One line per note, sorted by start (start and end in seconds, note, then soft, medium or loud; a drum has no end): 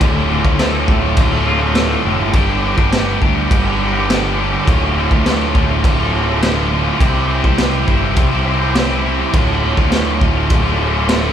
0.00 0.40 D1 medium
0.00 0.57 D2 loud
0.00 0.27 A2 medium
0.00 0.29 D3 loud
0.00 0.30 A3 loud
0.00 0.31 F4 loud
0.00 kick loud
0.00 crash medium
0.28 0.58 A2 medium
0.28 0.47 D3 medium
0.28 0.45 A3 medium
0.28 0.43 F4 medium
0.44 0.90 D2 medium
0.44 0.59 D3 medium
0.44 0.60 A3 medium
0.44 0.61 F4 medium
0.44 kick medium
0.58 1.17 D2 medium
0.58 0.86 A2 medium
0.58 0.87 D3 medium
0.58 0.88 A3 loud
0.58 0.89 F4 loud
0.58 snare loud
0.58 crash medium
0.87 1.14 D1 medium
0.87 1.31 A2 medium
0.87 1.03 D3 medium
0.87 1.02 A3 medium
0.87 1.00 F4 medium
0.87 kick medium
1.01 1.33 D3 medium
1.01 1.31 A3 medium
1.01 1.29 F4 medium
1.17 1.95 D1 loud
1.17 2.34 D3 medium
1.17 kick loud
1.17 crash medium
1.30 1.45 D3 medium
1.30 1.46 A3 medium
1.30 1.47 F4 medium
1.45 1.74 A2 medium
1.45 1.61 D3 medium
1.45 1.60 A3 medium
1.45 1.58 F4 medium
1.59 1.75 D3 medium
1.59 1.75 A3 medium
1.59 1.77 F4 medium
1.74 2.18 D2 loud
1.74 2.02 A2 medium
1.74 1.91 D3 loud
1.74 1.90 A3 medium
1.74 1.87 F4 loud
1.74 snare loud
1.74 crash medium
1.88 2.04 D3 medium
1.88 2.05 A3 medium
1.88 2.06 F4 medium
2.03 2.18 F1 medium
2.03 2.31 A2 medium
2.03 2.32 D3 medium
2.03 2.32 A3 medium
2.03 2.33 F4 medium
2.18 2.32 G1 medium
2.18 2.33 D3 medium
2.18 2.32 A3 medium
2.18 2.31 F4 medium
2.33 2.73 G1 medium
2.33 2.89 G2 medium
2.33 2.90 D3 loud
2.33 2.61 G3 medium
2.33 2.62 B3 medium
2.33 2.64 D4 loud
2.33 2.64 G4 loud
2.33 kick loud
2.33 crash medium
2.62 2.79 G3 medium
2.62 2.78 B3 medium
2.62 2.77 D4 medium
2.62 2.76 G4 medium
2.77 3.17 G1 medium
2.77 2.91 G3 medium
2.77 2.91 B3 medium
2.77 2.93 D4 medium
2.77 2.93 G4 medium
2.77 kick medium
2.91 3.49 G2 medium
2.91 3.50 D3 medium
2.91 3.19 G3 loud
2.91 3.20 B3 loud
2.91 3.22 D4 loud
2.91 3.22 G4 loud
2.91 snare loud
2.91 crash soft
3.20 3.48 D2 loud
3.20 3.37 G3 medium
3.20 3.36 B3 medium
3.20 3.36 D4 medium
3.20 3.33 G4 medium
3.20 kick medium
3.34 3.67 G3 medium
3.34 3.65 B3 medium
3.34 3.65 D4 medium
3.34 3.63 G4 medium
3.51 4.55 G1 medium
3.51 kick loud
3.51 crash medium
3.64 3.78 G3 medium
3.64 3.79 B3 medium
3.64 3.81 D4 medium
3.64 3.81 G4 medium
3.79 3.96 G3 medium
3.79 3.95 B3 medium
3.79 3.94 D4 medium
3.79 3.93 G4 medium
3.94 4.08 G3 medium
3.94 4.09 B3 medium
3.94 4.10 D4 medium
3.94 4.10 G4 medium
4.08 4.52 G2 medium
4.08 4.52 D3 loud
4.08 4.26 G3 loud
4.08 4.25 B3 loud
4.08 4.24 D4 loud
4.08 4.22 G4 loud
4.08 snare loud
4.08 crash medium
4.23 4.36 G3 medium
4.23 4.37 B3 medium
4.23 4.40 D4 medium
4.23 4.40 G4 medium
4.38 4.65 G3 medium
4.38 4.65 B3 medium
4.38 7.00 D4 medium
4.38 4.67 G4 medium
4.51 4.66 G3 medium
4.51 4.66 B3 medium
4.51 7.01 D4 medium
4.51 4.64 G4 medium
4.66 5.06 D1 medium
4.66 5.24 D2 medium
4.66 4.95 A2 medium
4.66 4.96 D3 medium
4.66 4.97 A3 loud
4.66 4.98 F4 loud
4.66 kick loud
4.66 crash medium
4.96 5.25 A2 medium
4.96 5.13 D3 medium
4.96 5.11 A3 medium
4.96 5.10 F4 medium
5.11 5.56 D2 medium
5.11 5.26 D3 medium
5.11 5.26 A3 medium
5.11 5.27 F4 medium
5.11 kick medium
5.25 5.83 D2 medium
5.25 5.53 A2 loud
5.25 5.54 D3 loud
5.25 5.55 A3 loud
5.25 5.56 F4 loud
5.25 snare loud
5.25 crash medium
5.54 5.81 D1 medium
5.54 5.98 A2 medium
5.54 5.71 D3 medium
5.54 5.69 A3 medium
5.54 5.67 F4 medium
5.54 kick medium
5.69 6.00 D3 medium
5.69 5.98 A3 medium
5.69 5.96 F4 medium
5.84 6.89 D1 medium
5.84 kick loud
5.84 crash medium
5.98 6.12 D3 medium
5.98 6.13 A3 medium
5.98 6.14 F4 medium
6.11 6.41 A2 medium
6.11 6.29 D3 medium
6.11 6.27 A3 medium
6.11 6.25 F4 medium
6.27 6.42 D3 medium
6.27 6.43 A3 medium
6.27 6.44 F4 medium
6.41 6.85 D2 loud
6.41 6.68 A2 loud
6.41 6.57 D3 loud
6.41 6.56 A3 loud
6.41 6.54 F4 loud
6.41 snare loud
6.41 crash medium
6.55 6.69 D3 medium
6.55 6.70 A3 medium
6.55 6.71 F4 medium
6.69 6.97 A2 medium
6.69 6.98 D3 medium
6.69 6.98 A3 medium
6.69 6.99 F4 medium
6.84 6.99 D3 medium
6.84 6.98 A3 medium
6.84 6.98 F4 medium
6.99 7.39 C2 medium
6.99 7.56 C3 loud
6.99 7.56 G3 medium
6.99 7.27 C4 loud
6.99 7.28 E4 medium
6.99 7.29 G4 loud
6.99 7.30 C5 loud
6.99 kick loud
6.99 crash medium
7.28 7.45 C4 medium
7.28 7.44 E4 medium
7.28 7.43 G4 medium
7.28 7.42 C5 medium
7.43 7.83 C2 medium
7.43 7.58 C4 medium
7.43 7.58 E4 medium
7.43 7.59 G4 medium
7.43 7.59 C5 medium
7.43 kick medium
7.57 8.16 C3 medium
7.57 8.16 G3 medium
7.57 7.85 C4 medium
7.57 7.86 E4 medium
7.57 7.88 G4 loud
7.57 7.89 C5 loud
7.57 snare loud
7.57 crash medium
7.86 8.14 G1 medium
7.86 8.04 C4 medium
7.86 8.03 E4 medium
7.86 8.02 G4 medium
7.86 8.00 C5 medium
7.86 kick medium
8.02 8.33 C4 medium
8.02 8.31 E4 medium
8.02 8.31 G4 medium
8.02 8.29 C5 medium
8.16 9.22 C2 loud
8.16 kick loud
8.16 crash medium
8.30 8.44 C4 medium
8.30 8.45 E4 medium
8.30 8.46 G4 medium
8.30 8.47 C5 medium
8.45 8.62 C4 medium
8.45 8.61 E4 medium
8.45 8.60 G4 medium
8.45 8.59 C5 medium
8.60 8.75 C4 medium
8.60 8.76 E4 medium
8.60 8.76 G4 medium
8.60 8.77 C5 medium
8.75 9.18 C3 loud
8.75 9.19 G3 loud
8.75 8.91 C4 medium
8.75 8.90 E4 loud
8.75 8.89 G4 loud
8.75 8.87 C5 loud
8.75 snare loud
8.75 crash medium
8.88 9.02 C4 medium
8.88 9.03 E4 medium
8.88 9.04 G4 medium
8.88 9.05 C5 medium
9.03 9.31 C4 medium
9.03 9.32 E4 medium
9.03 9.32 G4 medium
9.03 9.33 C5 medium
9.18 9.33 C4 medium
9.18 9.32 E4 medium
9.18 9.32 G4 medium
9.18 9.31 C5 medium
9.33 9.73 D1 medium
9.33 9.90 D2 medium
9.33 9.61 A2 medium
9.33 9.62 D3 loud
9.33 9.63 A3 medium
9.33 9.64 F4 loud
9.33 kick loud
9.33 crash medium
9.62 9.91 A2 medium
9.62 9.79 D3 medium
9.62 9.78 A3 medium
9.62 9.76 F4 medium
9.77 10.23 D2 medium
9.77 9.92 D3 medium
9.77 9.93 A3 medium
9.77 9.94 F4 medium
9.77 kick medium
9.91 10.50 D2 medium
9.91 10.20 A2 medium
9.91 10.21 D3 medium
9.91 10.21 A3 loud
9.91 10.22 F4 loud
9.91 snare loud
9.91 crash medium
10.21 10.47 D1 medium
10.21 10.65 A2 medium
10.21 10.38 D3 medium
10.21 10.36 A3 medium
10.21 10.34 F4 medium
10.21 kick medium
10.35 10.67 D3 medium
10.35 10.66 A3 medium
10.35 10.64 F4 medium
10.50 11.33 D1 loud
10.50 kick loud
10.50 crash medium
10.65 10.79 D3 medium
10.65 10.80 A3 medium
10.65 10.81 F4 medium
10.79 11.08 A2 medium
10.79 10.96 D3 medium
10.79 10.95 A3 medium
10.79 10.93 F4 medium
10.94 11.09 D3 medium
10.94 11.09 A3 medium
10.94 11.10 F4 medium
11.08 11.33 D2 medium
11.08 11.33 A2 loud
11.08 11.25 D3 loud
11.08 11.23 A3 loud
11.08 11.22 F4 loud
11.08 snare loud
11.08 crash medium
11.23 11.33 D3 medium
11.23 11.33 A3 medium
11.23 11.33 F4 medium